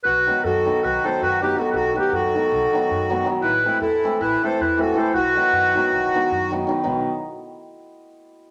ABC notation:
X:1
M:9/8
L:1/16
Q:3/8=106
K:none
V:1 name="Clarinet"
B4 A4 B2 c2 B2 B2 A3/2 B/2 | A2 B2 A12 z2 | B4 A4 B2 c2 B2 A2 c2 | B12- B2 z4 |
z16 z2 |]
V:2 name="Accordion"
^F4 F4 F2 A2 F2 G2 F3/2 G/2 | ^F2 G2 F12 z2 | E4 E4 E2 A2 E2 ^F2 A2 | ^F12- F2 z4 |
z16 z2 |]
V:3 name="Hammered dulcimer"
z2 [^D,^F,B,^D]2 z2 [D,F,B,D]2 z2 [D,F,B,D]2 z2 [D,F,B,D]2 [D,F,B,D]2 | z2 [^D,^F,B,^D]2 z2 [D,F,B,D]2 z2 [D,F,B,D]2 z2 [D,F,B,D]2 [D,F,B,D]2 | z2 [E,A,CE]2 z2 [E,A,CE]2 z2 [E,A,CE]2 z2 [E,A,CE]2 [E,A,CE]2 | z2 [^D,^F,B,^D]2 z2 [D,F,B,D]2 z2 [D,F,B,D]2 z2 [D,F,B,D]2 [D,F,B,D]2 |
[^D,^F,B,^D]2 z16 |]
V:4 name="Upright bass" clef=bass
B,,,4 ^F,,4 B,,,2 z2 F,,6 | B,,,4 ^F,,4 B,,,2 z2 F,,6 | A,,,4 E,,4 A,,,2 z2 E,,6 | B,,,4 ^F,,4 B,,,2 z2 F,,6 |
B,,,2 z16 |]